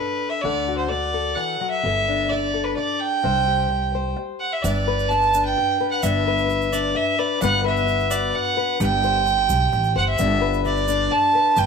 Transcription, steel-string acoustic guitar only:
Already playing: D4 A4
0.44 D3 A4
0.68 F#4
0.91 muted steel-string acoustic guitar stroke
1.14 A4
1.36 E3
1.60 F#3
1.85 G2 A4
2.08 D4
2.31 muted steel-string acoustic guitar stroke
2.54 A4
2.77 muted steel-string acoustic guitar stroke
3.23 C3 C5
3.47 G4
3.70 muted steel-string acoustic guitar stroke
3.95 C5
4.16 muted steel-string acoustic guitar stroke
4.64 G2 D4
4.88 B4
5.11 muted steel-string acoustic guitar stroke
5.35 D4
5.57 muted steel-string acoustic guitar stroke
5.80 B4
6.03 G2 D4
6.27 B4
6.48 muted steel-string acoustic guitar stroke
6.73 D4
6.95 muted steel-string acoustic guitar stroke
7.19 B4
7.41 G2 B3 D4 F#4 B4
7.64 B4
7.87 muted steel-string acoustic guitar stroke
8.10 F#4
8.33 muted steel-string acoustic guitar stroke
8.57 B4
8.80 G2 G4
9.04 C5
9.26 muted steel-string acoustic guitar stroke
9.50 G4
9.72 muted steel-string acoustic guitar stroke
9.96 C5
10.19 G2 D4
10.42 B4
10.65 muted steel-string acoustic guitar stroke
10.88 D4
11.11 muted steel-string acoustic guitar stroke
11.35 B4
11.57 G2 D4

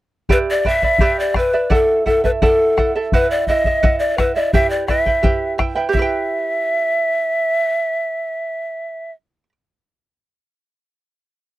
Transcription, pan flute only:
0.32 B4
0.51 D5
0.68 E5
1.20 D5
1.38 B4
1.74 A4
2.07 A4
2.25 B4
2.44 A4
3.14 B4
3.31 D5
3.48 D#5
3.99 D5
4.18 B4
4.35 D5
4.53 E5
4.70 D5
4.87 E5
5.92 E5

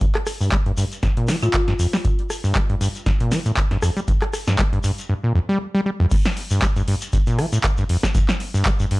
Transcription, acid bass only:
0.01 G2
0.41 G2
0.52 G3
0.66 G2
0.78 G2
1.03 G2
1.17 A#2
1.28 F3
1.43 A2
1.68 G2
1.79 F2
1.93 G3
2.05 G2
2.44 G2
2.55 G3
2.70 G2
2.81 G2
3.06 G2
3.20 A#2
3.32 F3
3.46 A2
3.71 G2
3.82 F2
3.97 G3
4.08 G2
4.47 G2
4.59 G3
4.73 G2
4.84 G2
5.09 G2
5.24 A#2
5.35 F2
5.49 G3
5.75 G3
5.86 G3
6.00 F2
6.11 G2
6.51 G2
6.62 G3
6.76 G2
6.88 G2
7.13 G2
7.27 A#2
7.38 F3
7.53 A2
7.78 G2
7.89 F2
8.03 G3
8.15 G2
8.54 G2
8.66 G3
8.80 G2
8.91 G2

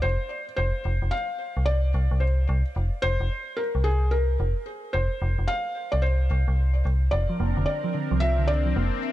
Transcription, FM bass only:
0.04 F1
0.58 F1
0.85 F1
1.02 F1
1.57 C2
1.94 C2
2.11 C2
2.49 C2
2.76 F1
3.03 F1
3.20 F1
3.75 C2
4.40 F1
4.94 F1
5.22 F1
5.39 F1
5.93 C2
6.31 C2
6.48 C2
6.85 C2
7.13 F1
7.40 F1
7.57 F1
8.11 C2
8.76 F1

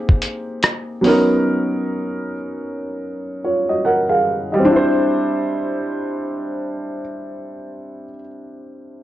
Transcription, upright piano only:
Already playing: A#3 C4 D#4 G4 G#4
1.01 F#3 B3 C#4
1.06 D#4 A#4
3.44 F4 C#5
3.69 F#4 D#5
3.85 A#4 F#5
4.09 G#4 F5
4.52 G3 F#4 D#5
4.59 C4
4.65 D4
4.71 E4
4.76 C5

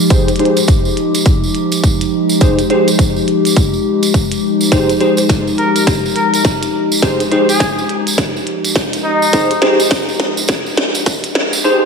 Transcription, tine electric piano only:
0.11 D#4 G4 G#4 C5
0.39 D#4 G4 G#4 C5
2.41 D#4 G4 G#4 C5
2.70 D#4 G4 G#4 C5
4.72 D#4 G4 G#4 C5
5.01 D#4 G4 G#4 C5
7.02 D#4 G4 G#4 C5
7.32 D#4 G4 G#4 C5
9.34 D#4 G4 G#4 C5
9.62 D#4 G4 G#4 C5
11.64 D#4 G4 G#4 C5

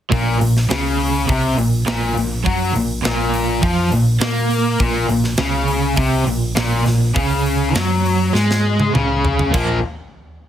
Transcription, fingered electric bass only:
0.12 A#1
0.41 A#1
0.70 C#2
1.29 C2
1.58 A#1
2.17 A#1
2.46 F#2
2.75 A#1
3.04 A#1
3.63 F2
3.92 A#1
4.20 A#2
4.81 A#1
5.09 A#1
5.38 C#2
5.98 C2
6.27 A#1
6.57 A#1
6.87 A#1
7.16 C#2
7.75 F#2
8.34 G#2
8.94 C#2
9.54 A#1

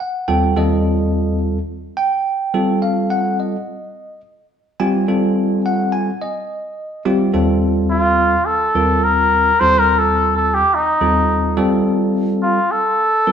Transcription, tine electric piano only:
0.00 F#5
0.28 D#2 G3 C4 F4 A4 G5
0.56 D#2 G3 C4 F4 A4 D#5
1.97 G5
2.54 G3 C4 F4 A4
2.82 F5
3.10 F#5
3.40 D#5
4.80 G3 C4 F4 G4 G#5
5.08 G3 C4 F4 A4
5.66 F#5
5.92 G#5
6.22 D#5
7.05 G3 C4 F4 G4
7.34 D#2 G3 C4 F4 A4
8.75 D#2 G3 C4 F4 A#4
9.61 D#2 G3 C4 F4 A4
11.01 D#2 G3 C4 F4 A4
11.57 G3 C4 F4 A4
13.27 G3 C4 F4 A#4

